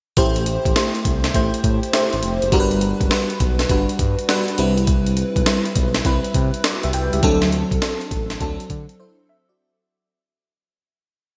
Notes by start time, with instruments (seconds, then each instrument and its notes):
0.17 analog synth bass A1, fm electric piano A3 E4 G4 C5, kick, closed hi-hat
0.36 closed hi-hat
0.46 closed hi-hat
0.65 analog synth bass A1, kick, closed hi-hat
0.76 fm electric piano A3 E4 G4 C5, snare, closed hi-hat
0.95 closed hi-hat
1.05 analog synth bass C2, kick, closed hi-hat
1.24 snare, closed hi-hat
1.34 analog synth bass A1, fm electric piano A3 E4 G4 C5, kick, closed hi-hat
1.54 closed hi-hat
1.64 analog synth bass A2, kick, closed hi-hat
1.83 closed hi-hat
1.93 fm electric piano A3 E4 G4 C5, snare, closed hi-hat
2.13 analog synth bass A1, closed hi-hat
2.23 analog synth bass F1, closed hi-hat
2.42 analog synth bass F#1, closed hi-hat
2.52 analog synth bass G1, fm electric piano G3 D4 F#4 A#4, kick, closed hi-hat
2.60 fm electric piano B4
2.71 closed hi-hat
2.81 closed hi-hat
3.01 analog synth bass F#1, kick, closed hi-hat
3.11 fm electric piano G3 D4 F#4 B4, snare, closed hi-hat
3.30 closed hi-hat
3.40 analog synth bass B1, kick, closed hi-hat
3.59 snare, closed hi-hat
3.69 analog synth bass G1, fm electric piano G3 D4 F#4 B4, kick, closed hi-hat
3.89 closed hi-hat
3.99 analog synth bass G2, kick, closed hi-hat
4.19 closed hi-hat
4.29 fm electric piano G3 D4 F#4 B4, snare, closed hi-hat
4.48 closed hi-hat
4.58 analog synth bass C2, fm electric piano G3 C4 E4 B4, closed hi-hat
4.78 closed hi-hat
4.87 kick, closed hi-hat
5.06 closed hi-hat
5.17 closed hi-hat
5.36 analog synth bass B1, kick, closed hi-hat
5.46 fm electric piano G3 C4 E4 B4, snare, closed hi-hat
5.65 closed hi-hat
5.76 analog synth bass B1, kick, closed hi-hat
5.95 snare, closed hi-hat
6.05 analog synth bass C2, fm electric piano G3 C4 E4 B4, kick, closed hi-hat
6.24 closed hi-hat
6.34 analog synth bass C3, kick, closed hi-hat
6.54 closed hi-hat
6.64 fm electric piano F#4 D5, snare, closed hi-hat
6.83 analog synth bass C2, fm electric piano G4 E5, closed hi-hat
6.93 analog synth bass C2, fm electric piano B4 G5, closed hi-hat
7.13 analog synth bass C#2, fm electric piano G4 E5, closed hi-hat
7.23 analog synth bass D2, fm electric piano F#3 C4 D4 A4, kick, closed hi-hat
7.42 snare, closed hi-hat
7.52 closed hi-hat
7.71 analog synth bass C2, kick, closed hi-hat
7.82 fm electric piano F#3 C4 D4 A4, snare, closed hi-hat
8.01 closed hi-hat
8.11 analog synth bass A1, kick, closed hi-hat
8.30 snare, closed hi-hat
8.40 analog synth bass D2, fm electric piano F#3 C4 D4 A4, kick, closed hi-hat
8.60 closed hi-hat
8.70 analog synth bass D3, kick, closed hi-hat
8.89 closed hi-hat
9.00 fm electric piano E4 C5
9.29 fm electric piano E5
9.49 fm electric piano F#4 D5